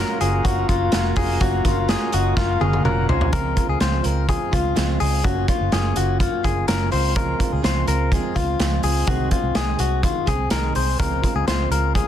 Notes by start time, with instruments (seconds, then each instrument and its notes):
Already playing: steel-string acoustic guitar F#3 A#3 C#4 F4, transistor combo organ F4 F#4 A#4, clean electric guitar A#4
0.20 fingered electric bass F#1, steel-string acoustic guitar A#3 C#4 F4, clean electric guitar G#4, closed hi-hat
0.45 fingered electric bass F#1, steel-string acoustic guitar F#3 A#3 C#4 F4, clean electric guitar F#4, kick, closed hi-hat
0.69 fingered electric bass F#1, steel-string acoustic guitar A#3 C#4 F4, clean electric guitar F4, kick, closed hi-hat
0.92 fingered electric bass F1, steel-string acoustic guitar F#3 A#3 C#4 F4, snare, closed hi-hat
1.16 fingered electric bass F1, steel-string acoustic guitar A#3 C#4 F4, clean electric guitar G#4, kick, open hi-hat
1.41 fingered electric bass F#1, steel-string acoustic guitar F#3 A#3 C#4 F4, clean electric guitar F#4, kick, closed hi-hat
1.65 fingered electric bass F#1, steel-string acoustic guitar A#3 C#4 F4, clean electric guitar F4, kick, closed hi-hat
1.89 steel-string acoustic guitar F#3 A#3 C#4 F4, clean electric guitar G#4, snare, closed hi-hat
2.13 fingered electric bass F#1, steel-string acoustic guitar A#3 C#4 F4, clean electric guitar F#4, transistor combo organ D#5, closed hi-hat
2.37 steel-string acoustic guitar F#3 A#3 C#4 F4, clean electric guitar F4, transistor combo organ F5, kick, snare
2.61 fingered electric bass F#1, steel-string acoustic guitar A#3 C#4 F4, clean electric guitar G#4, transistor combo organ F5, high tom
2.73 high tom
2.85 fingered electric bass F1, steel-string acoustic guitar F#3 A#3 C#4 F4, clean electric guitar A#4, transistor combo organ F#5, mid tom
3.09 fingered electric bass C2, steel-string acoustic guitar A#3 C#4 F4, clean electric guitar C5, transistor combo organ G#5, floor tom
3.21 floor tom
3.33 fingered electric bass C#2, steel-string acoustic guitar C#3 F3 G#3 C4 F4, clean electric guitar A#4, kick, closed hi-hat
3.56 steel-string acoustic guitar G#3 C4 F4, kick, closed hi-hat
3.68 fingered electric bass C#2, clean electric guitar G#4
3.80 fingered electric bass C#2, steel-string acoustic guitar C#3 F3 G#3 C4 F4, clean electric guitar C5, snare, closed hi-hat
4.03 fingered electric bass C#2, steel-string acoustic guitar G#3 C4 F4, clean electric guitar A#4, closed hi-hat
4.27 steel-string acoustic guitar F3 G#3 C4 F4, clean electric guitar G#4, kick, closed hi-hat
4.51 fingered electric bass C#2, steel-string acoustic guitar G#3 C4 F4, clean electric guitar F4, kick, closed hi-hat
4.75 fingered electric bass C#2, steel-string acoustic guitar C#3 F3 G#3 C4 F4, snare, closed hi-hat
4.99 fingered electric bass C#2, steel-string acoustic guitar G#3 C4 F4, clean electric guitar G#4, open hi-hat
5.23 steel-string acoustic guitar F#3 A#3 C#4 F4, clean electric guitar F#4, kick, closed hi-hat
5.48 steel-string acoustic guitar A#3 C#4 F4, clean electric guitar F4, kick, closed hi-hat
5.60 fingered electric bass F#1
5.72 fingered electric bass F#1, steel-string acoustic guitar F#3 A#3 C#4 F4, clean electric guitar G#4, snare, closed hi-hat
5.96 fingered electric bass F#1, steel-string acoustic guitar A#3 C#4 F4, clean electric guitar F#4, closed hi-hat
6.20 steel-string acoustic guitar F#3 A#3 C#4 F4, clean electric guitar F4, kick, closed hi-hat
6.44 fingered electric bass F#1, steel-string acoustic guitar A#3 C#4 F4, clean electric guitar G#4, kick, closed hi-hat
6.68 fingered electric bass F#1, steel-string acoustic guitar F#3 A#3 C#4 F4, clean electric guitar A#4, snare, closed hi-hat
6.91 fingered electric bass C#2, steel-string acoustic guitar G#3 C4 F4, clean electric guitar C5, open hi-hat
7.15 steel-string acoustic guitar C#3 F3 G#3 C4 F4, clean electric guitar A#4, kick, closed hi-hat
7.39 steel-string acoustic guitar G#3 C4 F4, kick, closed hi-hat
7.52 fingered electric bass C#2, clean electric guitar G#4
7.62 fingered electric bass C#2, steel-string acoustic guitar C#3 F3 G#3 C4 F4, clean electric guitar C5, snare, closed hi-hat
7.86 fingered electric bass C#2, steel-string acoustic guitar G#3 C4 F4, clean electric guitar A#4, closed hi-hat
8.12 steel-string acoustic guitar F3 G#3 C4 F4, clean electric guitar G#4, kick, closed hi-hat
8.35 fingered electric bass C#2, steel-string acoustic guitar G#3 C4 F4, clean electric guitar F4, kick, closed hi-hat
8.59 fingered electric bass C#2, steel-string acoustic guitar C#3 F3 G#3 C4 F4, snare, closed hi-hat
8.83 fingered electric bass C#2, steel-string acoustic guitar G#3 C4 F4, clean electric guitar G#4, open hi-hat
9.07 fingered electric bass C2, steel-string acoustic guitar C3 D#3 G#3 C4 G#4, clean electric guitar F#4, kick, closed hi-hat
9.31 steel-string acoustic guitar G#3 C4 G#4, clean electric guitar F4, kick, closed hi-hat
9.43 fingered electric bass C2
9.55 fingered electric bass C2, steel-string acoustic guitar C3 D#3 G#3 C4 G#4, clean electric guitar G#4, snare, closed hi-hat
9.79 fingered electric bass C2, steel-string acoustic guitar G#3 C4 G#4, clean electric guitar F#4, closed hi-hat
10.02 steel-string acoustic guitar D#3 G#3 C4 G#4, clean electric guitar F4, kick, closed hi-hat
10.26 fingered electric bass C2, steel-string acoustic guitar G#3 C4 G#4, clean electric guitar G#4, kick, closed hi-hat
10.50 fingered electric bass C2, steel-string acoustic guitar C3 D#3 G#3 C4 G#4, clean electric guitar A#4, snare, closed hi-hat
10.75 fingered electric bass C2, steel-string acoustic guitar G#3 C4 G#4, clean electric guitar C5, open hi-hat
10.99 fingered electric bass C#2, steel-string acoustic guitar C#3 F3 G#3 C4 F4, clean electric guitar A#4, kick, closed hi-hat
11.22 steel-string acoustic guitar G#3 C4 F4, kick, closed hi-hat
11.35 fingered electric bass C#2, clean electric guitar G#4
11.47 fingered electric bass C#2, steel-string acoustic guitar C#3 F3 G#3 C4 F4, clean electric guitar C5, snare, closed hi-hat
11.70 fingered electric bass C#2, steel-string acoustic guitar G#3 C4 F4, clean electric guitar A#4, closed hi-hat
11.95 steel-string acoustic guitar F3 G#3 C4 F4, clean electric guitar G#4, kick, closed hi-hat